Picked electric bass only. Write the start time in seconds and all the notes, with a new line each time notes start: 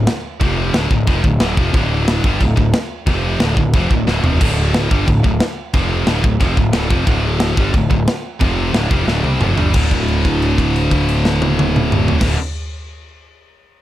0.41 F1
0.73 D1
0.90 D1
1.08 F1
1.24 D1
1.39 D1
1.57 F1
1.74 D1
2.24 G1
2.41 D1
2.57 D1
3.06 F1
3.39 D1
3.57 D1
3.74 F1
3.90 D1
4.07 D1
4.22 F1
4.41 D1
4.91 G1
5.08 D1
5.24 D1
5.74 F1
6.06 D1
6.24 D1
6.41 F1
6.57 D1
6.73 D1
6.91 F1
7.07 D1
7.57 G1
7.73 D1
7.90 D1
8.41 F1
8.73 D1
8.91 F1
9.07 D1
9.24 C2
9.40 F1
9.57 G1
9.74 D1
12.21 D1